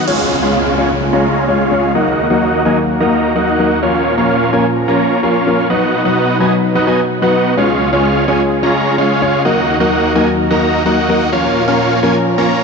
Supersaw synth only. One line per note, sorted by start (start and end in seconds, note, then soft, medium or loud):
0.07 0.40 G#3 medium
0.07 0.40 C#4 medium
0.07 0.40 F4 medium
0.07 0.40 C#5 medium
0.07 0.40 F5 medium
0.43 0.75 G#3 medium
0.43 0.75 C#4 medium
0.43 0.75 F4 medium
0.43 0.75 C#5 medium
0.43 0.75 F5 loud
0.78 0.91 G#3 medium
0.78 0.91 C#4 medium
0.78 0.91 F4 medium
0.78 0.91 C#5 medium
0.78 0.91 G#5 medium
1.13 1.45 G#3 medium
1.13 1.45 C#4 medium
1.13 1.45 F4 medium
1.13 1.45 C#5 medium
1.13 1.45 A#5 medium
1.48 1.92 G#3 medium
1.48 1.92 C#4 medium
1.48 1.92 F4 medium
1.48 1.92 C#5 medium
1.48 1.92 F5 medium
1.95 2.27 A#3 medium
1.95 2.27 D#4 medium
1.95 2.27 F#4 medium
1.95 2.27 D#5 medium
1.95 2.27 F#5 medium
2.30 2.62 A#3 medium
2.30 2.62 D#4 medium
2.30 2.62 F#4 medium
2.30 2.62 D#5 medium
2.30 2.62 F#5 loud
2.65 2.78 A#3 medium
2.65 2.78 D#4 medium
2.65 2.78 F#4 medium
2.65 2.78 D#5 medium
2.65 2.78 G#5 medium
3.00 3.33 A#3 medium
3.00 3.33 D#4 medium
3.00 3.33 F#4 medium
3.00 3.33 D#5 medium
3.00 3.33 A#5 medium
3.36 3.80 A#3 medium
3.36 3.80 D#4 medium
3.36 3.80 F#4 medium
3.36 3.80 D#5 medium
3.36 3.80 F#5 medium
3.83 4.15 A#3 medium
3.83 4.15 C#4 medium
3.83 4.15 F4 medium
3.83 4.15 C#5 medium
3.83 4.15 F5 medium
4.18 4.50 A#3 medium
4.18 4.50 C#4 medium
4.18 4.50 F4 medium
4.18 4.50 C#5 medium
4.18 4.50 F5 loud
4.53 4.66 A#3 medium
4.53 4.66 C#4 medium
4.53 4.66 F4 medium
4.53 4.66 C#5 medium
4.53 4.66 G#5 medium
4.88 5.20 A#3 medium
4.88 5.20 C#4 medium
4.88 5.20 F4 medium
4.88 5.20 C#5 medium
4.88 5.20 A#5 medium
5.23 5.67 A#3 medium
5.23 5.67 C#4 medium
5.23 5.67 F4 medium
5.23 5.67 C#5 medium
5.23 5.67 F5 medium
5.70 6.02 B3 medium
5.70 6.02 D#4 medium
5.70 6.02 F#4 medium
5.70 6.02 D#5 medium
5.70 6.02 F#5 medium
6.05 6.37 B3 medium
6.05 6.37 D#4 medium
6.05 6.38 F#4 medium
6.05 6.38 D#5 medium
6.05 6.38 F#5 loud
6.40 6.53 B3 medium
6.40 6.53 D#4 medium
6.40 6.53 F#4 medium
6.40 6.53 D#5 medium
6.40 6.53 G#5 medium
6.75 6.85 B3 medium
6.75 6.85 D#4 medium
6.75 6.85 F#4 medium
6.75 6.85 D#5 medium
6.75 6.85 F#5 medium
6.87 7.00 B3 medium
6.87 7.00 D#4 medium
6.87 7.00 F#4 medium
6.87 7.00 D#5 medium
6.87 7.00 G#5 loud
7.22 7.55 B3 medium
7.22 7.55 D#4 medium
7.22 7.55 F#4 medium
7.22 7.55 D#5 medium
7.22 7.55 F#5 medium
7.57 7.90 G#3 medium
7.57 7.90 C#4 medium
7.57 7.90 F4 medium
7.57 7.90 C#5 medium
7.57 7.90 F5 medium
7.93 8.25 G#3 medium
7.93 8.25 C#4 medium
7.93 8.25 F4 medium
7.93 8.25 C#5 medium
7.93 8.25 F5 loud
8.28 8.41 G#3 medium
8.28 8.41 C#4 medium
8.28 8.41 F4 medium
8.28 8.41 C#5 medium
8.28 8.41 G#5 medium
8.63 8.95 G#3 medium
8.63 8.95 C#4 medium
8.63 8.95 F4 medium
8.63 8.95 C#5 medium
8.63 8.95 A#5 medium
8.98 9.42 G#3 medium
8.98 9.42 C#4 medium
8.98 9.42 F4 medium
8.98 9.42 C#5 medium
8.98 9.42 F5 medium
9.45 9.77 A#3 medium
9.45 9.77 D#4 medium
9.45 9.77 F#4 medium
9.45 9.77 D#5 medium
9.45 9.77 F#5 medium
9.80 10.13 A#3 medium
9.80 10.13 D#4 medium
9.80 10.13 F#4 medium
9.80 10.13 D#5 medium
9.80 10.13 F#5 loud
10.15 10.28 A#3 medium
10.15 10.28 D#4 medium
10.15 10.28 F#4 medium
10.15 10.28 D#5 medium
10.15 10.28 G#5 medium
10.51 10.83 A#3 medium
10.51 10.83 D#4 medium
10.51 10.83 F#4 medium
10.51 10.83 D#5 medium
10.51 10.83 A#5 medium
10.86 11.30 A#3 medium
10.86 11.30 D#4 medium
10.86 11.30 F#4 medium
10.86 11.30 D#5 medium
10.86 11.30 F#5 medium
11.33 11.65 A#3 medium
11.33 11.65 C#4 medium
11.33 11.65 F4 medium
11.33 11.65 C#5 medium
11.33 11.65 F5 medium
11.68 12.00 A#3 medium
11.68 12.00 C#4 medium
11.68 12.00 F4 medium
11.68 12.00 C#5 medium
11.68 12.00 F5 loud
12.03 12.16 A#3 medium
12.03 12.16 C#4 medium
12.03 12.16 F4 medium
12.03 12.16 C#5 medium
12.03 12.16 G#5 medium
12.38 12.64 A#3 medium
12.38 12.64 C#4 medium
12.38 12.64 F4 medium
12.38 12.64 C#5 medium
12.38 12.64 A#5 medium